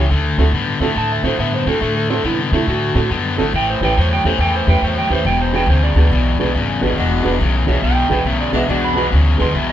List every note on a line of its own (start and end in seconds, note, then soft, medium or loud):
0.10 0.35 D2 medium
0.10 0.35 D3 medium
0.10 0.35 A3 medium
0.38 0.51 D2 medium
0.38 0.52 D3 medium
0.38 0.52 A3 medium
0.38 0.45 C4 medium
0.38 0.46 E4 medium
0.38 0.46 F#4 medium
0.38 0.46 A4 medium
0.52 0.78 A2 medium
0.52 0.78 D3 medium
0.52 0.78 B3 medium
0.80 0.94 A2 medium
0.80 0.94 D3 medium
0.80 0.94 A3 medium
0.80 0.88 C4 medium
0.80 0.88 E4 medium
0.80 0.88 F#4 medium
0.80 0.88 A4 medium
0.96 1.21 A2 medium
0.96 1.21 D3 medium
0.96 1.21 A3 medium
0.96 1.11 A5 loud
1.12 1.25 E5 medium
1.23 1.37 A2 medium
1.23 1.37 D3 medium
1.23 1.38 A3 medium
1.23 1.31 C4 medium
1.23 1.31 E4 medium
1.23 1.31 F#4 medium
1.23 1.31 A4 medium
1.23 1.39 C5 medium
1.38 1.64 A2 medium
1.38 1.64 D3 medium
1.38 1.64 B3 loud
1.38 1.53 E5 medium
1.54 1.67 C5 medium
1.66 1.80 A2 medium
1.66 1.80 D3 medium
1.66 1.80 A3 medium
1.66 1.74 C4 medium
1.66 1.74 E4 medium
1.66 1.74 F#4 medium
1.66 1.74 A4 medium
1.66 1.81 A4 medium
1.81 2.20 A2 medium
1.81 2.07 D3 medium
1.81 2.07 A3 medium
1.81 1.96 A4 medium
1.97 2.10 A4 medium
2.09 2.23 D3 medium
2.09 2.24 A3 medium
2.09 2.17 C4 medium
2.09 2.17 E4 medium
2.09 2.17 F#4 medium
2.09 2.25 A4 medium
2.09 2.17 C5 medium
2.24 2.49 C3 medium
2.24 2.49 D3 medium
2.24 2.50 B3 medium
2.24 2.39 E4 medium
2.52 2.66 C3 medium
2.52 2.66 D3 medium
2.52 2.66 A3 medium
2.52 2.60 C4 medium
2.52 2.60 E4 medium
2.52 2.68 E4 medium
2.52 2.60 F#4 medium
2.52 2.60 A4 medium
2.67 2.93 A2 medium
2.67 2.93 D3 medium
2.67 2.93 A3 medium
2.67 3.10 F#4 loud
2.95 3.09 A2 medium
2.95 3.09 D3 medium
2.95 3.09 A3 medium
2.95 3.03 C4 medium
2.95 3.03 E4 medium
2.95 3.03 F#4 medium
2.95 3.03 A4 medium
3.10 3.36 F#2 medium
3.10 3.36 D3 medium
3.10 3.36 B3 medium
3.37 3.52 G1 medium
3.37 3.52 D3 medium
3.37 3.52 A3 medium
3.37 3.46 C4 medium
3.37 3.46 E4 medium
3.37 3.46 F#4 medium
3.37 3.46 A4 medium
3.54 3.79 A1 medium
3.54 3.79 A2 medium
3.54 3.79 E3 medium
3.54 3.69 G5 loud
3.70 3.83 C5 medium
3.81 3.95 A1 medium
3.81 3.96 A2 medium
3.81 3.96 E3 medium
3.81 3.89 C#4 medium
3.81 3.89 E4 medium
3.81 3.89 G4 medium
3.81 3.89 B4 medium
3.81 3.97 G5 medium
3.97 4.22 E2 medium
3.97 4.22 A2 medium
3.97 4.22 F#3 loud
3.97 4.12 C5 medium
4.13 4.26 G5 loud
4.24 4.38 E2 medium
4.24 4.39 A2 medium
4.24 4.39 E3 medium
4.24 4.32 C#4 medium
4.24 4.32 E4 medium
4.24 4.32 G4 medium
4.24 4.32 A4 medium
4.24 4.40 C5 medium
4.39 4.64 E2 medium
4.39 4.65 A2 medium
4.39 4.65 E3 medium
4.39 4.54 G5 loud
4.56 4.69 C5 medium
4.67 4.81 E2 medium
4.67 4.81 A2 medium
4.67 4.81 E3 medium
4.67 4.75 C#4 medium
4.67 4.75 E4 medium
4.67 4.75 G4 medium
4.67 4.75 B4 medium
4.67 4.83 G5 loud
4.82 5.07 E2 medium
4.82 5.08 A2 medium
4.82 5.08 F#3 medium
4.82 4.97 C5 loud
4.98 5.11 G5 medium
5.09 5.24 D#2 medium
5.09 5.24 A2 medium
5.09 5.24 E3 medium
5.09 5.17 C#4 medium
5.09 5.18 E4 medium
5.09 5.18 G4 medium
5.09 5.18 B4 medium
5.09 5.26 C5 medium
5.24 5.64 E1 loud
5.24 5.51 E2 medium
5.24 5.51 B2 medium
5.24 5.40 G5 loud
5.42 5.55 C5 medium
5.53 5.67 E2 medium
5.53 5.67 B2 medium
5.53 5.61 D4 medium
5.53 5.61 F#4 medium
5.53 5.61 G#4 medium
5.53 5.61 B4 medium
5.53 5.69 G5 medium
5.67 5.93 D2 medium
5.67 5.94 E2 medium
5.67 5.94 C#3 loud
5.67 5.83 C5 medium
5.84 7.08 D5 loud
5.95 6.09 D2 medium
5.95 6.10 E2 medium
5.95 6.10 B2 medium
5.95 6.04 D4 medium
5.95 6.04 F#4 medium
5.95 6.04 G#4 medium
5.95 6.04 B4 medium
6.11 6.37 B1 medium
6.11 6.37 E2 medium
6.11 6.37 B2 medium
6.39 6.53 B1 medium
6.39 6.53 E2 medium
6.39 6.53 B2 medium
6.39 6.47 D4 medium
6.39 6.47 F#4 medium
6.39 6.47 G#4 medium
6.39 6.47 B4 medium
6.54 6.80 G#1 medium
6.54 6.79 E2 medium
6.54 6.80 C#3 medium
6.81 6.96 G#1 medium
6.81 6.96 E2 medium
6.81 6.96 B2 medium
6.81 6.89 D4 medium
6.81 6.89 F#4 medium
6.81 6.89 G#4 medium
6.81 6.90 B4 medium
6.96 7.23 E1 medium
6.96 7.22 E2 medium
6.96 7.23 B2 medium
6.96 7.51 G#3 medium
6.96 7.51 D4 medium
6.96 7.51 F#4 medium
7.23 7.39 E1 medium
7.23 7.39 E2 medium
7.23 7.39 B2 medium
7.23 7.32 D4 medium
7.23 7.32 F#4 medium
7.23 7.32 G#4 medium
7.23 7.32 B4 medium
7.40 7.65 B1 medium
7.40 7.65 E2 medium
7.40 7.65 C#3 medium
7.66 7.82 B1 medium
7.66 7.81 E2 medium
7.66 7.81 B2 medium
7.66 7.75 D4 medium
7.66 7.75 F#4 medium
7.66 7.75 G#4 medium
7.66 7.75 C#5 medium
7.66 7.83 E5 medium
7.82 8.08 B1 medium
7.82 8.08 E2 medium
7.82 8.08 B2 medium
7.82 8.25 G5 loud
8.09 8.24 B1 medium
8.09 8.25 E2 medium
8.09 8.25 B2 medium
8.09 8.18 D4 medium
8.09 8.18 F#4 medium
8.09 8.18 G#4 medium
8.09 8.18 B4 medium
8.24 8.50 B1 medium
8.24 8.51 E2 medium
8.24 8.51 C#3 medium
8.24 8.40 E5 loud
8.41 8.55 D5 medium
8.53 8.67 B1 medium
8.53 8.67 E2 medium
8.53 8.67 B2 medium
8.53 8.63 G#3 medium
8.53 8.61 D4 medium
8.53 8.63 D4 medium
8.53 8.61 F#4 medium
8.53 8.63 F#4 medium
8.53 8.61 G#4 medium
8.53 8.61 B4 medium
8.53 8.69 E5 loud
8.68 9.08 B1 medium
8.68 8.94 E2 medium
8.68 8.94 B2 medium
8.68 9.23 G#3 medium
8.68 9.23 D4 medium
8.68 9.23 F#4 medium
8.68 8.83 D5 medium
8.85 9.07 B5 loud
8.94 9.10 E2 medium
8.94 9.10 B2 medium
8.94 9.03 D4 medium
8.94 9.03 F#4 medium
8.94 9.04 G#4 medium
8.94 9.04 B4 medium
9.11 9.37 D2 medium
9.11 9.37 E2 medium
9.11 9.37 C#3 loud
9.38 9.53 D2 medium
9.38 9.53 E2 medium
9.38 9.53 B2 medium
9.38 9.46 D4 medium
9.38 9.46 F#4 medium
9.38 9.46 G#4 medium
9.38 9.47 B4 medium
9.38 9.55 C6 loud
9.54 9.72 B1 medium
9.54 9.72 E2 medium
9.54 9.72 B2 loud
9.54 9.69 E5 medium